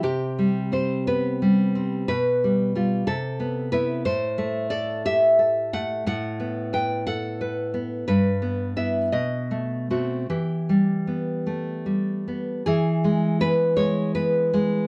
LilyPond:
\new Staff \with { instrumentName = "Nylon-string guitar" } { \time 6/8 \key e \minor \tempo 4. = 59 << { g'4 c''8 b'4. | b'4. a'4 b'8 | c''4 d''8 e''4 fis''8 | fis''4 g''8 fis''4 r8 |
b'4 e''8 dis''4 fis'8 | g'4. r4. | \key e \major gis'4 b'8 cis''8 b'4 | } \\ { c8 g8 c'8 b8 g8 c'8 | b,8 g8 <g f'>8 c8 b8 <b e'>8 | a,8 a8 a'8 g'8 a'8 a8 | a,8 b8 b'8 a'8 b'8 b8 |
g,8 b8 <b e'>8 b,8 a8 <a c'>8 | e8 g8 b8 a8 g8 b8 | e8 gis8 b8 gis8 b8 gis8 | } >> }